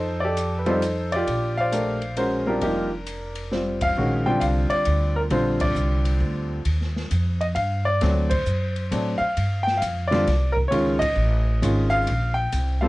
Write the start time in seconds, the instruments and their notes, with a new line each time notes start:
Already playing: upright bass F2, grand piano D#4 A4 C5
0.20 grand piano D5
0.24 grand piano G4 A4
0.37 hi-hat pedal, ride
0.59 grand piano B4
0.66 grand piano G3 C4 D#4 F4 A4 C5, ride
0.71 grand piano A4
0.82 hi-hat pedal, ride
1.12 grand piano F4 G4 D5, ride
1.27 upright bass A#1, kick, ride
1.58 grand piano C5 D5 F5
1.72 grand piano A3 D4 G4 A#4, hi-hat pedal, ride
2.02 ride
2.17 grand piano G#3 C#4 F#4 A#4 C5, ride
2.46 grand piano G3 C4 D4 F4 G4 A#4
2.61 upright bass F1, grand piano F3 A#3 D#4 G4, kick, ride
3.06 hi-hat pedal, ride
3.35 ride
3.51 grand piano G3 C4 F4 C5, snare
3.81 grand piano F5, kick, ride
3.97 upright bass A#1, grand piano D#3 G#3 C#4 F#4
4.26 grand piano D3 G3 C4 F4 G5
4.40 upright bass C2, grand piano F5, kick, hi-hat pedal, ride
4.70 grand piano D5, muted upright bass stroke, ride
4.85 upright bass D2, kick, ride
5.16 grand piano A#4
5.30 upright bass A#1, grand piano D3 G3 C4 F4 C5, kick, ride
5.60 grand piano D5, kick, ride
5.75 upright bass C2, hi-hat pedal
6.05 ride
6.20 upright bass D2, kick
6.65 upright bass D#2, kick, ride
6.81 snare
6.97 snare
7.11 upright bass F2, kick, hi-hat pedal, ride
7.41 grand piano D#5, ride
7.55 upright bass G2, grand piano F5, kick, ride
7.85 grand piano D5
8.01 upright bass D2, grand piano F#3 A3 C4 D4, snare, ride
8.29 grand piano C5, kick, ride
8.46 upright bass F#2, hi-hat pedal
8.76 ride
8.91 upright bass A2, grand piano F#3 A3 C4 D4, kick, hi-hat pedal, ride
9.18 grand piano F5, muted upright bass stroke
9.37 upright bass G2, kick, ride
9.63 grand piano G5
9.67 snare
9.77 grand piano F5
9.82 upright bass F2, kick, hi-hat pedal, ride
10.08 grand piano D3 D5
10.12 grand piano G3 C4 F4, snare, ride
10.27 upright bass C2, kick, snare, ride
10.52 grand piano A#4
10.57 kick
10.68 upright bass C#2, grand piano D#3 G#3 C#4 F4 C#5, ride
10.99 grand piano D#5, kick, ride
11.16 upright bass A1
11.62 upright bass G#1, grand piano D#3 G#3 C#4 F4, kick, hi-hat pedal, ride
11.90 grand piano F5
12.07 upright bass A#1, kick, ride
12.34 grand piano G5
12.52 upright bass C2, kick, hi-hat pedal, ride
12.81 grand piano G3 C4 F4 A4 F5